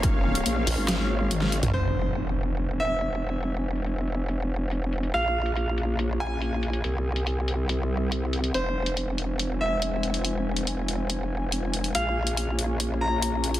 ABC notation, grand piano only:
X:1
M:4/4
L:1/8
Q:1/4=141
K:Fm
V:1 name="Grand piano"
z8 | c3 z2 =e3- | =e8 | f3 z2 a3- |
a8 | c3 z2 =e3- | =e8 | f3 z2 b3 |]